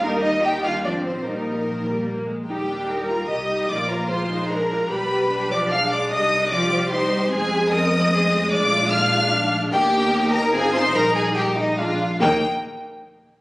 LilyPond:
<<
  \new Staff \with { instrumentName = "Violin section" } { \time 3/4 \key ees \major \tempo 4 = 149 bes'8 ees''8 g''8 f''8 d''8 c''8 | bes'2~ bes'8 r8 | g''4. bes''8 ees'''4 | d'''8 bes''8 c'''4 bes''4 |
b''4. d'''8 f'''8 d'''8 | ees'''4 d'''4 c'''4 | aes''4 ees'''2 | d'''4 f'''4. r8 |
g''4. bes''8 aes''8 c'''8 | bes''8 aes''8 g''8 ees''8 f''4 | g''8 r2 r8 | }
  \new Staff \with { instrumentName = "Violin section" } { \time 3/4 \key ees \major bes'8 ees''8 g''8 f''8 d''8 c''8 | bes'2~ bes'8 r8 | g'4. bes'8 ees''4 | d''8 bes'8 c''4 bes'4 |
b'4. d''8 f''8 d''8 | ees''4 d''4 c''4 | aes'4 ees''2 | d''4 f''4. r8 |
g'4. bes'8 aes'8 c''8 | bes'8 aes'8 g'8 ees'8 f'4 | g''8 r2 r8 | }
  \new Staff \with { instrumentName = "Cello section" } { \time 3/4 \key ees \major bes8 ees'8 g'8 f'8 d'8 c'8 | bes2~ bes8 r8 | g'4 bes'4 g'4 | f'2 bes'4 |
g'2 d'4 | ees'4 g'2 | aes'4 bes'4 aes'4 | f'2 d'4~ |
d'4 ees'4 f'4 | ees'2 d'8 r8 | ees,8 r2 r8 | }
  \new Staff \with { instrumentName = "Viola section" } { \time 3/4 \key ees \major << { ees'4 ees'8 d'8 c'4 | ees'4 ees8 g8 bes8 aes8 | ees'8 d'8 ees'8 f'8 g'8 ees'8 | f'4 f'8 ees'8 d'8 f'8 |
g'4 d'2~ | d'4 f'4 ees'4 | c'2. | d'2. |
ees'2.~ | ees'2 d'8 r8 | ees'8 r2 r8 | } \\ { g4 g4 f4 | g4 r2 | g2 g4 | bes4 aes2 |
g4 g8 f8 aes4 | g4 f8 f8 g4 | aes2.~ | aes2. |
bes2 c'4 | g2 aes8 r8 | bes8 r2 r8 | } >> }
  \new Staff \with { instrumentName = "Double bass section" } { \clef bass \time 3/4 \key ees \major ees,2 aes,,4 | bes,,2~ bes,,8 r8 | ees,2 c,4 | bes,,2. |
b,,2. | c,2. | f,2. | bes,,2. |
ees,2 aes,,4 | bes,,2~ bes,,8 r8 | ees,8 r2 r8 | }
>>